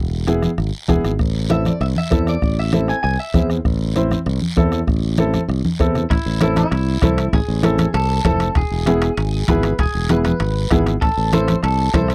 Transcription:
Already playing: fingered electric bass E1
0.27 upright piano B3 E4 G#4, bombo rim, high conga, short guiro
0.42 bombo rim, high conga, short guiro
0.58 fingered electric bass G#1, bombo rim, high conga, long guiro
0.88 fingered electric bass E1, upright piano B3 E4 G#4, bombo low, bombo rim, high conga, short guiro
1.04 fingered electric bass G#1, bombo rim, short guiro
1.19 fingered electric bass A1, bombo low, bombo rim, high conga, long guiro
1.49 upright piano C4 E4 A4, clean electric guitar E5, bombo rim, high conga, short guiro
1.65 clean electric guitar D5, bombo rim, high conga, short guiro
1.80 fingered electric bass C2, clean electric guitar E5, bombo rim, high conga, long guiro
1.96 clean electric guitar E5, high conga
2.10 fingered electric bass E2, upright piano C4 E4 A4, bombo low, bombo rim, high conga, short guiro
2.27 clean electric guitar D5, bombo rim, short guiro
2.42 fingered electric bass A1, bombo low, bombo rim, high conga, long guiro
2.59 clean electric guitar E5
2.73 upright piano C4 E4 A4, bombo rim, high conga, short guiro
2.88 clean electric guitar G#5, bombo rim, short guiro
3.03 fingered electric bass C2, clean electric guitar G#5, bombo rim, high conga, long guiro
3.20 clean electric guitar E5
3.34 fingered electric bass E2, upright piano C4 E4 G#4, bombo low, bombo rim, high conga, short guiro
3.50 bombo rim, short guiro
3.65 fingered electric bass A1, bombo low, bombo rim, high conga, long guiro
3.96 upright piano C4 E4 C5, bombo rim, high conga, short guiro
4.11 bombo rim, high conga, short guiro
4.26 fingered electric bass C2, bombo rim, high conga, long guiro
4.41 high conga
4.56 fingered electric bass E2, upright piano C4 E4 A4, bombo low, bombo rim, high conga, short guiro
4.72 bombo rim, short guiro
4.87 fingered electric bass A1, bombo low, bombo rim, high conga, long guiro
5.18 upright piano C4 E4 A4, bombo rim, high conga, short guiro
5.34 bombo rim, high conga, short guiro
5.48 fingered electric bass C2, bombo rim, long guiro
5.65 high conga
5.80 fingered electric bass E2, upright piano C4 E4 A4, bombo low, bombo rim, short guiro
5.95 bombo rim, low conga, short guiro
6.10 fingered electric bass A1, clean electric guitar E4, bombo low, bombo rim, high conga, high timbale, long guiro
6.26 fingered electric bass A1
6.41 upright piano C4 E4 A4, clean electric guitar E4, bombo rim, high conga, high timbale, short guiro
6.56 clean electric guitar E4, bombo rim, high conga, high timbale, short guiro
6.71 fingered electric bass C2, bombo rim, high conga, high timbale, long guiro
7.02 fingered electric bass C2, upright piano C4 E4 A4, bombo low, bombo rim, high conga, high timbale, short guiro
7.18 bombo rim, high timbale, short guiro
7.33 fingered electric bass A1, clean electric guitar G#4, bombo low, bombo rim, high conga, high timbale, long guiro
7.48 fingered electric bass A1
7.63 upright piano C4 E4 A4, bombo rim, high conga, high timbale, short guiro
7.78 bombo rim, high conga, high timbale, short guiro
7.94 fingered electric bass C2, clean electric guitar A4, bombo rim, high conga, high timbale, long guiro
8.25 fingered electric bass F1, upright piano C4 E4 A4, clean electric guitar A4, bombo low, bombo rim, high conga, high timbale, short guiro
8.40 bombo rim, high timbale, short guiro
8.55 fingered electric bass E1, clean electric guitar G#4, bombo low, bombo rim, high conga, high timbale, long guiro
8.71 fingered electric bass E1
8.86 upright piano B3 E4 G#4, bombo rim, high conga, high timbale, short guiro
9.02 bombo rim, high timbale, short guiro
9.17 fingered electric bass G#1, bombo rim, high conga, high timbale, long guiro
9.48 fingered electric bass G#1, upright piano B3 E4 G#4, clean electric guitar B4, bombo low, bombo rim, high conga, high timbale, short guiro
9.63 bombo rim, high timbale, short guiro
9.79 fingered electric bass E1, clean electric guitar G#4, bombo low, bombo rim, high conga, high timbale, long guiro
9.95 fingered electric bass E1
10.09 upright piano B3 E4 G#4, clean electric guitar B4, bombo rim, high conga, high timbale, short guiro
10.25 clean electric guitar B4, bombo rim, high conga, high timbale, short guiro
10.40 fingered electric bass G#1, bombo rim, high conga, high timbale, long guiro
10.71 fingered electric bass G#1, upright piano B3 E4 G#4, bombo low, bombo rim, high conga, high timbale, low timbale, short guiro
10.86 bombo rim, high timbale, short guiro
11.01 fingered electric bass A1, clean electric guitar A4, bombo low, bombo rim, high conga, high timbale, long guiro
11.18 fingered electric bass A1
11.33 upright piano C4 E4 A4, clean electric guitar C5, bombo rim, high conga, high timbale, short guiro
11.48 bombo rim, high conga, high timbale, short guiro
11.63 fingered electric bass C2, clean electric guitar A4, bombo rim, high timbale, long guiro
11.94 fingered electric bass C2, upright piano C4 E4 A4, clean electric guitar C5, bombo low, bombo rim, high conga, high timbale, low timbale, short guiro
12.08 bombo rim, high timbale, short guiro

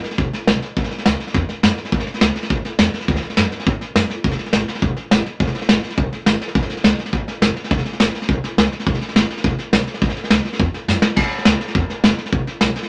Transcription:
0.04 snare
0.11 snare
0.18 upright bass E1, kick, snare
0.33 muted upright bass stroke, snare
0.47 upright bass B1, snare, hi-hat pedal
0.62 muted upright bass stroke, snare
0.76 upright bass A1, kick, snare
0.84 snare
0.91 snare
0.98 snare
1.06 upright bass C#2, snare, hi-hat pedal
1.20 muted upright bass stroke, snare
1.27 snare
1.34 upright bass E2, kick, snare
1.49 snare
1.63 upright bass F#2, snare, hi-hat pedal
1.78 muted upright bass stroke, snare
1.85 snare
1.92 upright bass A1, kick, snare
1.99 snare
2.07 muted upright bass stroke, snare
2.14 snare
2.21 upright bass C#2, snare, hi-hat pedal
2.36 muted upright bass stroke, snare
2.43 snare
2.50 upright bass A1, kick, snare
2.65 muted upright bass stroke, snare
2.79 upright bass E2, snare, hi-hat pedal
2.93 muted upright bass stroke, snare
3.01 snare
3.08 upright bass D2, kick, snare
3.16 snare
3.22 muted upright bass stroke, snare
3.30 snare
3.37 upright bass F#2, snare, hi-hat pedal
3.52 snare
3.60 snare
3.66 upright bass A2, kick, snare
3.81 muted upright bass stroke, snare
3.95 upright bass F#2, snare, hi-hat pedal
4.10 snare
4.24 upright bass E1, kick, snare
4.31 snare
4.39 muted upright bass stroke, snare
4.46 snare
4.53 upright bass G#1, snare, hi-hat pedal
4.68 snare
4.75 snare
4.82 upright bass E1, kick, snare
4.96 muted upright bass stroke, snare
5.11 upright bass G#1, snare, hi-hat pedal
5.26 snare
5.40 upright bass E1, kick, snare
5.47 snare
5.55 snare
5.62 snare
5.69 upright bass G#1, snare, hi-hat pedal
5.83 snare
5.90 snare
5.97 upright bass B1, kick, snare
6.12 muted upright bass stroke, snare
6.26 upright bass G#1, snare, hi-hat pedal
6.41 muted upright bass stroke, snare
6.48 snare
6.55 upright bass A1, kick, snare
6.62 snare
6.69 muted upright bass stroke, snare
6.77 snare
6.84 upright bass C#2, snare, hi-hat pedal
6.99 snare
7.05 snare
7.13 upright bass A1, kick, snare
7.26 muted upright bass stroke, snare
7.41 upright bass F#1, snare, hi-hat pedal
7.56 snare
7.64 snare
7.71 upright bass E1, kick, snare
7.78 snare
7.85 snare
7.93 snare
8.00 upright bass G#1, snare, hi-hat pedal
8.15 snare
8.22 snare
8.29 upright bass B1, kick, snare
8.43 muted upright bass stroke, snare
8.57 upright bass C#2, snare, hi-hat pedal
8.72 snare
8.80 snare
8.86 upright bass E1, kick, snare
8.94 snare
9.01 muted upright bass stroke, snare
9.09 snare
9.15 upright bass G#1, snare, hi-hat pedal
9.30 snare
9.37 snare
9.44 upright bass E1, kick, snare
9.58 muted upright bass stroke, snare
9.72 upright bass B1, snare, hi-hat pedal
9.86 muted upright bass stroke, snare
9.94 snare
10.02 upright bass A1, kick, snare
10.09 snare
10.16 muted upright bass stroke, snare
10.24 snare
10.30 upright bass C#2, snare, hi-hat pedal
10.45 muted upright bass stroke, snare
10.53 snare
10.59 upright bass E2, kick, snare
10.74 muted upright bass stroke, snare
10.88 upright bass F#2, snare, hi-hat pedal
11.02 muted upright bass stroke, snare
11.16 upright bass A1, kick, snare, crash
11.31 muted upright bass stroke, snare
11.38 snare
11.45 upright bass C#2, snare, hi-hat pedal
11.61 snare
11.68 snare
11.75 upright bass E2, kick, snare
11.89 muted upright bass stroke, snare
12.03 upright bass F#1, snare, hi-hat pedal
12.18 muted upright bass stroke, snare
12.26 snare
12.32 upright bass E1, kick, snare
12.47 muted upright bass stroke, snare
12.61 upright bass B1, snare, hi-hat pedal
12.76 muted upright bass stroke, snare
12.83 snare

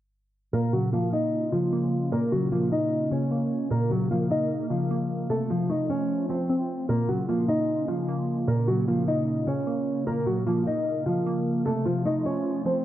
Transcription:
0.53 synth pluck A#2, analog synth pad C#3 A#3 C#4 F4, nylon-string guitar A#3 A#4
0.73 synth pluck C#3, nylon-string guitar F#3 F#4
0.93 nylon-string guitar F3 F4, synth pluck A#3
1.13 nylon-string guitar D#4 D#5
1.52 synth pluck C#3, nylon-string guitar F3 F4
1.73 synth pluck A#3
2.12 synth pluck A#2, nylon-string guitar A#3 A#4
2.32 synth pluck C#3, nylon-string guitar F#3 F#4
2.52 nylon-string guitar F3 F4, synth pluck A#3
2.72 nylon-string guitar D#4 D#5
3.11 synth pluck C#3, nylon-string guitar C#4 C#5
3.31 synth pluck A#3
3.71 synth pluck A#2, analog synth pad C#3 A#3 A#4, nylon-string guitar A#3 A#4
3.90 synth pluck C#3, nylon-string guitar F#3 F#4
4.11 nylon-string guitar F3 F4, synth pluck A#3
4.31 nylon-string guitar D#4 D#5
4.70 synth pluck C#3, nylon-string guitar F3 F4
4.91 synth pluck A#3
5.30 synth pluck C3, analog synth pad F3 A3 F4, nylon-string guitar A3 A4
5.50 synth pluck F3, nylon-string guitar F3 F4
5.70 synth pluck A3, nylon-string guitar D#4 D#5
5.90 nylon-string guitar C#4 C#5
6.29 synth pluck F3, nylon-string guitar C4 C5
6.50 synth pluck C4
6.89 synth pluck A#2, analog synth pad C#3 A#3 C#4, nylon-string guitar A#3 A#4
7.09 synth pluck C#3, nylon-string guitar F#3 F#4
7.29 nylon-string guitar F3 F4, synth pluck A#3
7.48 nylon-string guitar D#4 D#5
7.88 synth pluck C#3, nylon-string guitar F3 F4
8.08 synth pluck A#3
8.48 synth pluck A#2, nylon-string guitar A#3 A#4
8.68 synth pluck C#3, nylon-string guitar F#3 F#4
8.88 nylon-string guitar F3 F4, synth pluck A#3
9.08 nylon-string guitar D#4 D#5
9.47 synth pluck C#3, nylon-string guitar C#4 C#5
9.67 synth pluck A#3
10.07 synth pluck A#2, nylon-string guitar A#3 A#4, analog synth pad A#4
10.26 synth pluck C#3, nylon-string guitar F#3 F#4
10.47 nylon-string guitar F3 F4, synth pluck A#3
10.67 nylon-string guitar D#4 D#5
11.06 synth pluck C#3, nylon-string guitar F3 F4
11.26 synth pluck A#3
11.65 synth pluck C3, analog synth pad F3 A3 F4, nylon-string guitar A3 A4
11.86 synth pluck F3, nylon-string guitar F3 F4
12.05 synth pluck A3, nylon-string guitar D#4 D#5
12.25 nylon-string guitar C#4 C#5
12.65 synth pluck F3, nylon-string guitar C4 C5

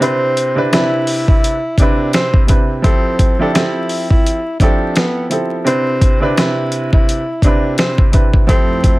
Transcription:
0.00 upright piano C3 C4 D4 E4 B4, tenor saxophone C4, closed hi-hat
0.37 closed hi-hat
0.55 upright piano C3 C4 D4 E4 B4, tenor saxophone D4
0.72 upright piano C3 C4 D4 E4 B4, tenor saxophone E4, snare, closed hi-hat
1.07 open hi-hat
1.28 tenor saxophone E4, kick
1.44 closed hi-hat
1.78 upright piano C3 C4 D4, tenor saxophone D4, kick, closed hi-hat
1.82 upright piano E4 B4
2.13 tenor saxophone C4, snare, closed hi-hat
2.34 kick
2.47 upright piano C3 C4 D4 E4 B4, kick, closed hi-hat
2.82 upright piano F3 C4 E4 G4 A4, tenor saxophone C4, kick, closed hi-hat
3.19 kick, closed hi-hat
3.39 upright piano F3 C4 E4 G4 A4, tenor saxophone D4
3.54 upright piano F3 C4 E4 G4 A4, tenor saxophone E4, snare, closed hi-hat
3.89 open hi-hat
4.10 tenor saxophone E4, kick
4.26 closed hi-hat
4.59 upright piano F3 C4 E4 G4 A4, tenor saxophone D4, kick, closed hi-hat
4.96 tenor saxophone B3, snare, closed hi-hat
5.29 upright piano F3 C4 E4 G4 A4, closed hi-hat
5.64 upright piano C3 C4 D4 E4 B4, tenor saxophone C4, closed hi-hat
6.01 kick, closed hi-hat
6.20 upright piano C3 C4 D4 E4 B4, tenor saxophone D4
6.37 upright piano C3 C4 D4 E4 B4, tenor saxophone E4, snare, closed hi-hat
6.72 closed hi-hat
6.93 tenor saxophone E4, kick
7.09 closed hi-hat
7.42 upright piano C3 C4 D4, tenor saxophone D4, kick, closed hi-hat
7.46 upright piano E4 B4
7.78 tenor saxophone C4, snare, closed hi-hat
7.98 kick
8.12 upright piano C3 C4 D4 E4 B4, kick, closed hi-hat
8.34 kick
8.47 analog synth pad F2 A3 E4, upright piano F3 C4 E4 G4 A4, tenor saxophone C4, kick, closed hi-hat
8.84 kick, closed hi-hat

